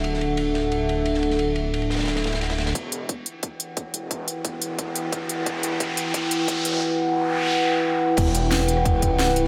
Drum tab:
CC |--------------------------------|--------------------------------|--------------------------------|--------------------------------|
RD |x---x---x---x---x---x---x---x---|x---x---x-x-xxxxx-x-x-x-x-x-x-x-|--------------------------------|--------------------------------|
HH |--------------------------------|--------------------------------|x---x---x---x---x---x---x---x---|x---x---x---x---x---x---x---x---|
SD |--o---------o-------------o---o-|------------ooooo-o-o-o-o-o-o-o-|--------------------------------|--------------------------------|
BD |--------------------------------|--------------------------------|o-------o-------o-------o-------|o-------o-------o-------o-------|

CC |--------------------------------|--------------------------------|x-------------------------------|
RD |--------------------------------|--------------------------------|x---x---x---x---x---x---x---x---|
HH |x---x---x---x---x---x---x---x---|--------------------------------|x---x---x---x---x---x---x---x---|
SD |--------------------------------|--------------------------------|--o-----o-r-o-r---------o-o-----|
BD |o-------o-------o-------o-------|--------------------------------|o---------------o---o-----------|